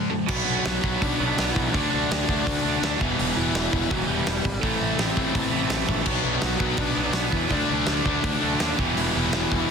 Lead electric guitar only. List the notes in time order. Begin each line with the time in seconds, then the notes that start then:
0.67 F#3 F#4
1.02 D4 D5
1.27 D4 D5
1.51 E3 E4
1.73 D4 D5
1.90 D4
1.95 D5
3.37 E3 E4
3.91 F#3 F#4
4.07 G3 G4
4.60 A3 A4
4.99 C4 C5
6.44 F#3 F#4
6.78 D4 D5
7.04 D4 D5
7.29 E3 E4
7.51 D4 D5
7.72 D4 D5
9.15 E3 E4